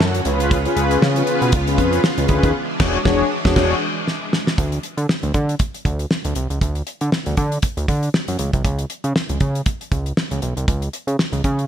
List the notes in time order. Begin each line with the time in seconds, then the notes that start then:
Already playing: D3 C#4 F#4
0.00 F#2 F#5, snare
0.14 C#5, closed hi-hat
0.25 C#2 C#3 B3 C#4 F4 G#4 B4, closed hi-hat
0.40 closed hi-hat
0.51 kick, closed hi-hat
0.65 C#4 F4 G#4 B4, closed hi-hat
0.77 C#2, closed hi-hat
0.91 closed hi-hat
1.02 C#3, snare
1.16 C#4 F4 G#4 B4, closed hi-hat
1.27 closed hi-hat
1.42 B2, closed hi-hat
1.52 C#2, kick, closed hi-hat
1.67 C#4 F4 G#4 B4, closed hi-hat
1.78 F2, kick, closed hi-hat
1.93 closed hi-hat
2.04 snare
2.18 C#2 C#4 F4 G#4 B4, closed hi-hat
2.28 D2, kick, closed hi-hat
2.43 D#2, kick, closed hi-hat
2.55 E3 G#3 D4
2.79 E1 D4 F#4 G#4 C#5, kick, snare, crash
3.05 E1 D4 F#4 G#4 C#5, kick, snare
3.44 E1 D4 F#4 G#4 C#5, kick, snare
3.56 E1 D4 F#4 G#4 C#5, kick, snare, crash
4.08 snare
4.33 snare
4.47 snare
4.58 D2, kick, closed hi-hat
4.72 closed hi-hat
4.83 closed hi-hat
4.97 D3, closed hi-hat
5.09 snare
5.23 D2, closed hi-hat
5.34 D3, kick, closed hi-hat
5.49 closed hi-hat
5.59 kick, closed hi-hat
5.74 closed hi-hat
5.85 D2, kick, closed hi-hat
5.99 closed hi-hat
6.11 snare
6.25 D2, closed hi-hat
6.35 C2, closed hi-hat
6.50 C#2, closed hi-hat
6.61 D2, kick, closed hi-hat
6.75 closed hi-hat
6.87 closed hi-hat
7.01 D3, closed hi-hat
7.12 snare
7.26 D2, closed hi-hat
7.37 D3, kick, closed hi-hat
7.52 closed hi-hat
7.62 kick, closed hi-hat
7.77 D2, closed hi-hat
7.88 D3, kick, closed hi-hat
8.03 closed hi-hat
8.14 snare
8.28 F#2, closed hi-hat
8.39 C#2, closed hi-hat
8.53 C2, kick, closed hi-hat
8.64 C#2, kick, closed hi-hat
8.79 closed hi-hat
8.90 closed hi-hat
9.04 C#3, closed hi-hat
9.16 snare
9.29 C#2, closed hi-hat
9.40 C#3, kick, closed hi-hat
9.55 closed hi-hat
9.66 kick, closed hi-hat
9.81 closed hi-hat
9.91 C#2, kick, closed hi-hat
10.06 closed hi-hat
10.17 snare
10.31 C#2, closed hi-hat
10.42 B1, closed hi-hat
10.57 C2, closed hi-hat
10.68 C#2, kick, closed hi-hat
10.82 closed hi-hat
10.93 closed hi-hat
11.07 C#3, closed hi-hat
11.19 snare
11.33 C#2, closed hi-hat
11.44 C#3, kick, closed hi-hat
11.59 closed hi-hat